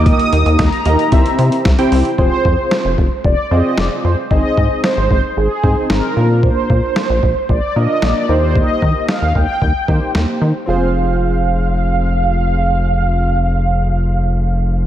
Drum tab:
HH |xxxxxxxxxxxxxxox|----------------|----------------|----------------|
SD |----o-------o---|----o-------o---|----o-------o---|----o-------o---|
BD |o---o---o---o---|o-o---o-o-------|o-o---o---o-----|o-o---o-o-------|

HH |----------------|----------------|----------------|
SD |----o-------o---|----------------|----------------|
BD |o-o---o-o-o-----|----------------|----------------|